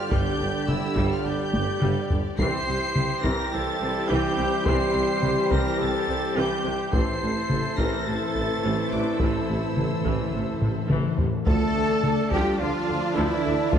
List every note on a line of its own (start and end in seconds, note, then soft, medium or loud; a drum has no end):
0.00 2.22 D3 medium
0.00 2.22 G3 medium
0.00 2.20 D4 medium
0.00 2.21 D4 medium
0.00 2.35 D4 medium
0.00 0.11 F4 medium
0.00 2.20 G4 medium
0.00 2.21 G4 medium
0.00 2.34 G4 medium
0.00 2.20 D5 medium
0.00 2.35 D5 medium
0.00 2.20 G5 medium
0.00 0.11 F6 medium
0.11 0.19 G1 loud
0.11 0.23 G1 medium
0.11 0.20 G2 medium
0.11 0.38 G3 medium
0.11 0.70 G4 medium
0.11 0.69 G6 loud
0.11 taiko loud
0.40 0.48 G1 medium
0.40 0.52 G1 medium
0.40 0.49 G2 medium
0.40 0.48 D3 medium
0.68 0.80 G1 medium
0.68 0.77 G1 medium
0.68 0.78 G2 medium
0.68 0.76 D3 medium
0.68 1.10 E4 medium
0.68 1.11 E6 loud
0.68 taiko mid medium
0.96 1.08 G1 medium
0.96 1.05 G1 loud
0.96 1.06 G2 medium
0.96 1.23 G3 loud
0.96 taiko medium
1.11 1.26 F4 medium
1.11 1.26 F6 medium
1.25 1.34 G1 medium
1.25 1.37 G1 medium
1.25 1.35 G2 medium
1.25 1.33 D3 medium
1.25 2.10 G4 medium
1.25 2.11 G6 medium
1.54 1.62 G1 medium
1.54 1.66 G1 medium
1.54 1.62 G2 medium
1.54 1.62 D3 medium
1.54 taiko high medium
1.82 1.90 G1 medium
1.82 1.95 G1 medium
1.82 1.91 G2 medium
1.82 2.08 G3 medium
1.82 taiko mid medium
2.10 2.19 G1 medium
2.10 2.23 G1 medium
2.10 2.20 G2 medium
2.10 2.18 D3 medium
2.10 taiko low loud
2.37 2.51 C2 medium
2.37 2.48 C2 loud
2.37 2.48 C3 medium
2.37 6.89 E3 medium
2.37 2.66 E3 medium
2.37 6.90 G3 loud
2.37 6.89 C4 medium
2.37 6.92 E4 medium
2.37 6.89 E4 medium
2.37 6.89 G4 medium
2.37 6.89 C5 medium
2.37 3.26 C5 loud
2.37 6.92 C5 medium
2.37 6.89 G5 medium
2.37 3.20 C7 loud
2.37 taiko loud
2.68 2.76 C2 medium
2.68 2.79 C2 medium
2.68 2.76 C3 medium
2.96 3.07 C2 medium
2.96 3.05 C2 medium
2.96 3.04 C3 medium
2.96 taiko mid medium
3.23 3.36 C2 medium
3.23 3.33 C2 medium
3.23 3.33 C3 medium
3.23 3.50 E3 medium
3.23 3.53 A#4 medium
3.23 3.52 A#6 loud
3.23 taiko medium
3.53 3.64 C2 medium
3.53 3.61 C2 medium
3.53 3.61 C3 medium
3.53 4.11 A4 medium
3.53 4.10 A6 loud
3.81 3.92 C2 medium
3.81 3.90 C2 medium
3.81 3.89 C3 medium
3.81 3.90 C3 medium
4.09 4.21 C2 medium
4.09 4.18 C2 medium
4.09 4.17 C3 medium
4.09 4.36 E3 loud
4.09 4.67 G4 loud
4.09 4.66 G6 loud
4.37 4.46 C2 medium
4.37 4.50 C2 medium
4.37 4.45 C3 medium
4.66 4.78 C2 medium
4.66 4.75 C2 loud
4.66 4.74 C3 medium
4.66 4.93 E3 medium
4.66 5.53 C5 loud
4.66 5.50 C7 loud
4.66 taiko loud
4.94 5.03 C2 medium
4.94 5.06 C2 medium
4.94 5.02 C3 medium
4.94 5.03 C3 medium
5.22 5.31 C2 medium
5.22 5.35 C2 medium
5.22 5.30 C3 medium
5.22 5.31 C3 medium
5.22 taiko mid medium
5.51 5.63 C2 medium
5.51 5.60 C2 medium
5.51 5.60 C3 medium
5.51 5.78 E3 medium
5.51 5.81 A#4 medium
5.51 5.79 A#6 loud
5.51 taiko medium
5.80 5.92 C2 medium
5.80 5.89 C2 medium
5.80 5.88 C3 medium
5.80 6.38 A4 medium
5.80 6.37 A6 loud
6.08 6.19 C2 medium
6.08 6.16 C2 medium
6.08 6.16 C3 medium
6.08 6.17 C3 medium
6.36 6.48 C2 medium
6.36 6.45 C2 medium
6.36 6.45 C3 medium
6.36 6.62 E3 medium
6.36 6.95 G4 medium
6.36 6.92 G6 loud
6.64 6.76 C2 medium
6.64 6.73 C2 medium
6.64 6.72 C3 medium
6.64 6.73 C3 medium
6.93 7.04 A1 medium
6.93 7.02 A1 medium
6.93 7.02 A2 medium
6.93 7.19 E3 medium
6.93 11.14 E3 medium
6.93 11.14 A3 loud
6.93 11.15 C4 medium
6.93 11.22 E4 medium
6.93 11.14 E4 medium
6.93 11.15 E4 medium
6.93 11.27 A4 medium
6.93 11.18 A4 medium
6.93 7.77 C5 loud
6.93 11.14 C5 medium
6.93 11.23 C5 medium
6.93 11.18 E5 medium
6.93 7.76 C7 loud
6.93 taiko loud
7.14 7.21 A2 soft
7.21 7.33 A1 medium
7.21 7.30 A1 medium
7.21 7.30 A2 medium
7.21 7.29 C3 medium
7.30 7.37 A2 soft
7.38 7.44 A2 soft
7.45 7.51 A2 soft
7.50 7.62 A1 medium
7.50 7.59 A1 medium
7.50 7.58 A2 medium
7.50 7.59 A2 soft
7.50 7.58 C3 medium
7.50 taiko mid medium
7.60 7.67 A2 soft
7.68 7.74 A2 soft
7.78 7.87 A1 medium
7.78 7.90 A1 medium
7.78 7.86 A2 medium
7.78 8.05 E3 medium
7.78 8.08 A#4 medium
7.78 8.07 A#6 loud
7.78 taiko medium
7.90 7.97 A2 soft
7.98 8.04 A2 soft
8.05 8.18 A1 medium
8.05 8.16 A1 medium
8.05 8.12 A2 soft
8.05 8.15 A2 medium
8.05 8.14 C3 medium
8.05 8.92 A4 medium
8.05 8.92 A6 loud
8.14 8.20 A2 soft
8.21 8.28 A2 medium
8.29 8.35 A2 medium
8.35 8.47 A1 medium
8.35 8.44 A1 medium
8.35 8.43 A2 medium
8.35 8.44 C3 medium
8.44 8.50 A2 soft
8.52 8.57 A2 medium
8.59 8.65 A2 medium
8.63 8.75 A1 medium
8.63 8.73 A1 medium
8.63 8.72 A2 medium
8.63 8.90 E3 medium
8.88 9.03 A1 medium
8.88 8.95 A2 medium
8.88 9.00 C3 medium
8.88 9.20 D6 medium
8.92 9.01 A1 medium
8.92 9.00 A2 medium
8.92 9.22 D4 medium
8.96 9.03 A2 medium
9.11 9.18 A2 medium
9.19 9.31 A1 medium
9.19 9.29 A1 medium
9.19 9.25 A2 medium
9.19 9.28 A2 medium
9.19 9.47 E3 medium
9.19 10.90 E4 medium
9.19 10.90 E6 medium
9.19 taiko loud
9.26 9.33 A2 medium
9.34 9.40 A2 medium
9.42 9.48 A2 medium
9.48 9.60 A1 medium
9.48 9.57 A1 medium
9.48 9.56 A2 medium
9.48 9.57 C3 soft
9.57 9.62 A2 medium
9.63 9.70 A2 medium
9.71 9.77 A2 medium
9.77 9.88 A1 medium
9.77 9.87 A1 medium
9.77 9.85 A2 medium
9.77 9.85 C3 medium
9.77 taiko mid medium
9.86 9.93 A2 medium
9.94 10.00 A2 medium
10.01 10.08 A2 medium
10.01 10.31 E3 medium
10.01 taiko medium
10.05 10.13 A1 medium
10.05 10.17 A1 medium
10.05 10.14 A2 medium
10.05 10.15 A2 medium
10.16 10.23 A2 medium
10.24 10.30 A2 medium
10.31 10.45 A1 soft
10.31 10.42 A1 medium
10.31 10.38 A2 medium
10.31 10.42 A2 medium
10.31 10.42 C3 soft
10.39 10.46 A2 medium
10.47 10.53 A2 medium
10.54 10.60 A2 medium
10.61 10.70 A1 medium
10.61 10.73 A1 medium
10.61 10.67 A2 medium
10.61 10.70 A2 soft
10.61 10.71 C3 medium
10.61 taiko low-mid medium
10.68 10.74 A2 loud
10.76 10.82 A2 loud
10.83 10.89 A2 loud
10.90 11.02 A1 medium
10.90 10.99 A1 medium
10.90 10.98 A2 medium
10.90 10.97 A2 loud
10.90 11.16 E3 medium
10.90 taiko mid medium
10.98 11.05 A2 loud
11.06 11.13 A2 loud
11.14 11.20 A2 medium
11.18 11.30 A1 medium
11.18 11.28 A1 medium
11.18 11.27 A2 medium
11.18 11.28 A2 medium
11.18 11.26 C3 medium
11.18 taiko low medium
11.29 11.35 A2 loud
11.36 11.43 A2 loud
11.46 11.57 D2 medium
11.46 11.56 D2 loud
11.46 12.27 D3 loud
11.46 13.79 D3 loud
11.46 11.74 F3 medium
11.46 12.28 A3 loud
11.46 13.79 D4 medium
11.46 13.79 D4 loud
11.46 12.33 A4 loud
11.46 13.79 A4 medium
11.46 12.28 A4 loud
11.46 13.79 D5 medium
11.46 13.79 A5 medium
11.46 12.28 A5 loud
11.46 taiko loud
11.74 11.86 D2 medium
11.74 11.85 D2 medium
11.74 11.84 D3 medium
12.03 12.15 D2 medium
12.03 12.13 D2 medium
12.03 12.12 D3 medium
12.03 taiko mid medium
12.31 12.43 D2 loud
12.31 12.41 D2 medium
12.31 12.58 F3 medium
12.31 12.60 G3 medium
12.31 12.59 G4 loud
12.31 12.61 G4 medium
12.31 12.60 G5 loud
12.31 taiko medium
12.59 12.71 D2 medium
12.59 12.69 D2 medium
12.59 12.67 D3 medium
12.59 13.16 F3 medium
12.59 13.18 F4 medium
12.59 13.15 F4 loud
12.59 13.15 F5 medium
12.88 13.00 D2 medium
12.88 12.98 D2 medium
12.88 12.96 D3 medium
13.16 13.25 D2 medium
13.16 13.28 D2 medium
13.16 13.73 E3 medium
13.16 13.43 F3 medium
13.16 13.72 E4 loud
13.16 13.73 E4 loud
13.16 13.74 E5 medium
13.45 13.56 D2 medium
13.45 13.54 D2 medium
13.45 13.53 D3 medium
13.71 13.79 D2 medium
13.71 13.79 D2 loud
13.71 13.79 F3 loud
13.71 13.79 F3 medium
13.71 13.79 F4 medium
13.71 13.79 F5 medium
13.71 taiko loud